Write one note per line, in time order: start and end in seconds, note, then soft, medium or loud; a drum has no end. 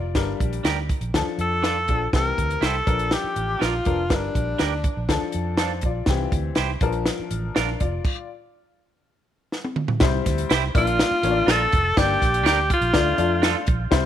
0.00 0.15 F1 medium
0.00 0.38 F4 medium
0.00 0.38 D5 medium
0.15 0.33 G1 loud
0.15 0.74 G3 medium
0.15 0.74 D4 medium
0.15 0.74 A#4 medium
0.15 kick medium
0.15 snare medium
0.15 closed hi-hat medium
0.40 0.58 A#1 medium
0.40 kick medium
0.40 closed hi-hat medium
0.53 closed hi-hat soft
0.64 0.91 D2 medium
0.64 0.77 D4 medium
0.64 0.78 G4 medium
0.64 0.78 A#4 medium
0.64 snare loud
0.64 closed hi-hat medium
0.89 kick medium
0.89 closed hi-hat medium
1.01 1.10 A#1 medium
1.01 closed hi-hat soft
1.14 1.23 D2 loud
1.14 1.73 F3 medium
1.14 1.74 D4 medium
1.14 1.74 A4 medium
1.14 kick medium
1.14 snare loud
1.14 closed hi-hat medium
1.27 muted fingered electric bass stroke soft
1.38 1.90 F2 medium
1.38 2.10 A4 medium
1.38 closed hi-hat medium
1.62 1.76 D4 medium
1.62 1.77 F4 medium
1.62 1.77 A4 medium
1.62 snare medium
1.62 closed hi-hat medium
1.88 2.06 A#1 medium
1.88 2.03 F3 medium
1.88 2.03 D4 medium
1.88 2.03 A4 medium
1.88 kick medium
1.88 closed hi-hat medium
2.13 2.31 C2 medium
2.13 2.71 E3 medium
2.13 2.71 C4 medium
2.13 2.72 G4 medium
2.13 2.67 A#4 medium
2.13 kick loud
2.13 snare medium
2.13 closed hi-hat medium
2.38 2.56 D2 medium
2.38 kick medium
2.38 closed hi-hat medium
2.50 closed hi-hat soft
2.61 2.80 C2 medium
2.61 2.75 E4 medium
2.61 2.75 G4 medium
2.61 2.76 C5 medium
2.61 snare loud
2.61 closed hi-hat medium
2.66 3.15 A4 medium
2.86 3.14 A#1 medium
2.86 3.65 F3 medium
2.86 3.66 D4 medium
2.86 3.66 A#4 medium
2.86 kick medium
2.86 closed hi-hat medium
2.99 closed hi-hat soft
3.11 3.65 G4 medium
3.11 snare loud
3.11 closed hi-hat medium
3.24 muted fingered electric bass stroke soft
3.36 3.54 A1 medium
3.36 closed hi-hat medium
3.59 3.79 A#1 medium
3.59 3.73 D4 medium
3.59 3.74 F4 medium
3.59 3.74 A#4 medium
3.59 snare medium
3.59 closed hi-hat medium
3.63 4.16 F4 medium
3.85 4.10 F1 medium
3.85 4.00 F3 medium
3.85 4.00 D4 medium
3.85 4.01 A#4 medium
3.85 kick medium
3.85 closed hi-hat medium
4.10 4.28 G1 loud
4.10 4.68 G3 medium
4.10 4.68 D4 medium
4.10 4.69 A#4 medium
4.10 kick loud
4.10 snare medium
4.10 closed hi-hat medium
4.15 5.11 D4 medium
4.35 4.53 A#1 medium
4.35 kick medium
4.35 closed hi-hat medium
4.58 4.87 D2 medium
4.58 4.72 D4 medium
4.58 4.73 G4 medium
4.58 4.73 A#4 medium
4.58 snare loud
4.58 closed hi-hat medium
4.84 kick medium
4.84 closed hi-hat medium
4.97 5.06 A#1 medium
5.08 5.18 D2 loud
5.08 5.68 F3 medium
5.08 5.68 D4 medium
5.08 5.59 A4 medium
5.08 kick medium
5.08 snare loud
5.08 closed hi-hat medium
5.32 5.84 F2 medium
5.32 closed hi-hat medium
5.57 5.71 D4 medium
5.57 5.72 F4 medium
5.57 5.72 A4 medium
5.57 5.82 C5 medium
5.57 5.82 A5 medium
5.57 snare loud
5.57 closed hi-hat medium
5.81 6.01 A#1 medium
5.81 6.31 F4 medium
5.81 6.31 D5 medium
5.81 kick medium
5.81 closed hi-hat medium
6.06 6.25 C2 loud
6.06 6.66 E3 medium
6.06 6.67 C4 medium
6.06 6.67 G4 medium
6.06 kick medium
6.06 snare loud
6.06 closed hi-hat medium
6.32 6.50 D2 medium
6.32 kick medium
6.32 closed hi-hat medium
6.55 6.75 C2 medium
6.55 6.69 E4 medium
6.55 6.70 G4 medium
6.55 6.71 C5 medium
6.55 snare loud
6.55 closed hi-hat medium
6.81 7.08 A#1 medium
6.81 7.60 F3 medium
6.81 7.55 D4 medium
6.81 7.54 A#4 medium
6.81 kick loud
6.81 closed hi-hat medium
6.92 closed hi-hat soft
7.06 snare medium
7.06 closed hi-hat medium
7.19 muted fingered electric bass stroke soft
7.31 7.49 A1 medium
7.31 closed hi-hat medium
7.55 7.74 A#1 medium
7.55 7.68 D4 medium
7.55 7.79 D4 soft
7.55 7.69 F4 medium
7.55 7.79 A#4 medium
7.55 7.69 A#4 medium
7.55 snare loud
7.55 closed hi-hat medium
7.80 7.98 F1 medium
7.80 8.27 F4 medium
7.80 8.27 D5 medium
7.80 kick medium
7.80 closed hi-hat medium
8.05 kick medium
8.05 crash medium
9.52 snare medium
9.65 high tom medium
9.76 mid tom medium
9.88 floor tom medium
10.00 10.19 C2 loud
10.00 10.59 G3 medium
10.00 10.59 C4 medium
10.00 10.59 E4 medium
10.00 10.59 C5 medium
10.00 kick loud
10.00 snare loud
10.00 closed hi-hat medium
10.25 10.43 D2 medium
10.25 kick medium
10.25 snare soft
10.25 closed hi-hat medium
10.38 closed hi-hat medium
10.49 10.68 C2 medium
10.49 10.63 E4 loud
10.49 10.64 G4 loud
10.49 10.64 C5 medium
10.49 snare loud
10.49 closed hi-hat medium
10.75 11.01 A#1 loud
10.75 11.14 A#3 medium
10.75 11.14 D4 medium
10.75 11.14 F4 medium
10.75 11.52 F4 loud
10.75 11.14 D5 medium
10.75 11.44 F6 medium
10.75 kick loud
10.75 closed hi-hat medium
10.87 closed hi-hat medium
10.99 snare loud
10.99 closed hi-hat loud
11.11 muted fingered electric bass stroke soft
11.23 11.41 A1 loud
11.23 11.66 A#3 medium
11.23 11.67 D4 medium
11.23 11.67 F4 medium
11.23 11.30 C#5 medium
11.23 closed hi-hat medium
11.31 11.70 D5 medium
11.46 11.65 A#1 loud
11.46 11.60 D4 medium
11.46 11.61 F4 medium
11.46 11.61 A#4 medium
11.46 11.97 A6 medium
11.46 snare loud
11.46 closed hi-hat medium
11.50 12.00 A4 loud
11.72 11.91 F1 medium
11.72 kick loud
11.72 closed hi-hat medium
11.96 12.15 G1 loud
11.96 12.54 A#3 medium
11.96 12.54 D4 medium
11.96 12.54 G4 medium
11.96 12.46 G4 loud
11.96 12.55 D5 medium
11.96 12.45 G6 medium
11.96 kick loud
11.96 snare loud
11.96 closed hi-hat medium
12.21 12.44 A#1 medium
12.21 kick medium
12.21 snare soft
12.21 closed hi-hat medium
12.34 closed hi-hat medium
12.43 12.71 D2 medium
12.43 12.58 D4 loud
12.43 12.58 G4 loud
12.43 12.69 G4 medium
12.43 12.59 A#4 loud
12.43 12.68 G6 medium
12.43 snare loud
12.43 closed hi-hat medium
12.70 13.65 F4 medium
12.70 13.64 F6 medium
12.70 kick loud
12.70 closed hi-hat medium
12.81 12.90 A#1 medium
12.81 closed hi-hat medium
12.94 13.12 D2 loud
12.94 13.13 A3 medium
12.94 13.14 D4 medium
12.94 13.14 F4 medium
12.94 13.14 D5 medium
12.94 kick medium
12.94 snare loud
12.94 closed hi-hat loud
13.17 13.54 F2 loud
13.17 13.61 A3 medium
13.17 13.61 D4 medium
13.17 13.61 F4 medium
13.17 13.61 D5 medium
13.17 closed hi-hat medium
13.42 13.56 D4 medium
13.42 13.56 F4 medium
13.42 13.57 A4 loud
13.42 snare loud
13.42 closed hi-hat medium
13.67 13.85 A#1 loud
13.67 kick loud
13.67 closed hi-hat medium
13.91 14.06 C2 loud
13.91 14.06 G3 medium
13.91 14.06 C4 medium
13.91 14.06 E4 medium
13.91 14.06 C5 loud
13.91 kick loud
13.91 snare loud
13.91 closed hi-hat medium